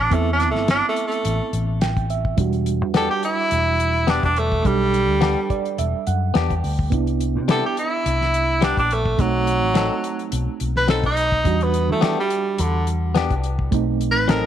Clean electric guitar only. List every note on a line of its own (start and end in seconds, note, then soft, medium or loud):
2.94 3.12 B3 medium
2.94 3.13 D4 medium
2.94 3.14 G4 medium
4.07 4.26 B3 medium
4.07 4.26 D4 medium
4.07 4.27 G4 medium
5.21 5.39 B3 medium
5.21 5.40 D4 medium
5.21 5.40 G4 medium
6.34 6.52 B3 medium
6.34 6.53 D4 medium
6.34 6.54 G4 medium
7.48 7.66 G3 medium
7.48 7.67 B3 medium
7.48 7.67 E4 medium
7.48 7.67 G4 medium
8.61 8.79 G3 medium
8.61 8.80 B3 medium
8.61 8.80 E4 medium
8.61 8.81 G4 medium
9.74 9.93 F#3 medium
9.74 9.93 C4 medium
9.74 9.94 D#4 medium
9.74 9.94 A4 medium
10.88 11.06 F#3 medium
10.88 11.06 C4 medium
10.88 11.07 D#4 medium
10.88 11.07 A4 medium
12.01 12.19 B3 medium
12.01 12.20 D4 medium
12.01 12.21 G4 medium
13.15 13.33 B3 medium
13.15 13.34 D4 medium
13.15 13.34 G4 medium
14.28 14.46 F#3 medium
14.28 14.46 C4 medium
14.28 14.46 D#4 medium
14.28 14.46 A4 medium